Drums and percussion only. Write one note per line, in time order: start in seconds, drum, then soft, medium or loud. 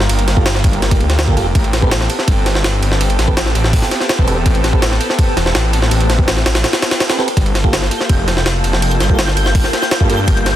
0.00 snare medium
0.09 ride medium
0.19 ride soft
0.28 snare soft
0.28 ride medium
0.37 kick loud
0.46 snare loud
0.46 ride medium
0.55 snare medium
0.64 kick loud
0.64 ride medium
0.73 ride soft
0.82 snare soft
0.82 ride medium
0.91 kick loud
0.91 ride medium
1.00 ride soft
1.10 snare soft
1.10 ride medium
1.19 snare loud
1.19 ride medium
1.28 kick loud
1.37 ride medium
1.55 kick loud
1.55 ride medium
1.64 ride soft
1.73 snare medium
1.73 ride medium
1.82 kick loud
1.91 snare loud
1.91 ride medium
2.01 snare soft
2.10 ride medium
2.19 snare soft
2.28 kick loud
2.28 ride medium
2.46 snare soft
2.46 ride medium
2.55 snare medium
2.64 snare loud
2.64 ride medium
2.83 ride medium
2.92 snare medium
3.01 ride medium
3.10 ride soft
3.19 snare soft
3.19 ride medium
3.28 kick medium
3.37 snare loud
3.37 ride medium
3.46 snare soft
3.55 ride medium
3.64 snare medium
3.73 kick loud
3.73 open hi-hat medium
3.82 snare soft
3.91 snare soft
3.91 ride medium
4.00 snare soft
4.09 snare loud
4.09 ride medium
4.19 kick loud
4.28 ride medium
4.46 kick loud
4.46 ride medium
4.55 ride soft
4.64 snare medium
4.64 ride medium
4.73 kick loud
4.82 snare loud
4.82 ride medium
4.91 snare soft
5.01 ride medium
5.10 snare soft
5.19 kick loud
5.19 ride medium
5.37 snare medium
5.37 ride medium
5.46 snare medium
5.55 snare loud
5.55 ride medium
5.73 ride medium
5.82 snare medium
5.91 ride medium
6.00 ride soft
6.10 snare soft
6.10 ride medium
6.19 kick loud
6.28 snare loud
6.28 ride medium
6.37 snare soft
6.46 snare loud
6.46 ride medium
6.55 snare loud
6.55 ride medium
6.64 snare loud
6.64 ride medium
6.73 snare loud
6.73 ride medium
6.82 snare loud
6.82 ride medium
6.91 snare loud
6.91 ride medium
7.00 snare loud
7.00 ride medium
7.10 snare loud
7.10 ride medium
7.19 snare soft
7.28 ride medium
7.37 kick loud
7.37 ride medium
7.46 ride soft
7.55 snare medium
7.55 ride medium
7.64 kick loud
7.73 snare loud
7.73 ride medium
7.82 snare soft
7.91 ride medium
8.00 snare soft
8.09 kick loud
8.09 ride medium
8.28 snare medium
8.28 ride medium
8.37 snare medium
8.46 snare loud
8.46 ride medium
8.64 ride medium
8.73 snare medium
8.82 ride medium
8.91 ride soft
9.00 snare soft
9.00 ride medium
9.10 kick medium
9.19 snare loud
9.19 ride medium
9.28 snare soft
9.37 ride medium
9.46 snare medium
9.55 kick loud
9.55 open hi-hat medium
9.64 snare soft
9.73 snare soft
9.73 ride medium
9.82 snare soft
9.91 snare loud
9.91 ride medium
10.01 kick loud
10.10 ride medium
10.28 kick loud
10.28 ride medium
10.37 ride soft
10.46 snare medium
10.46 ride medium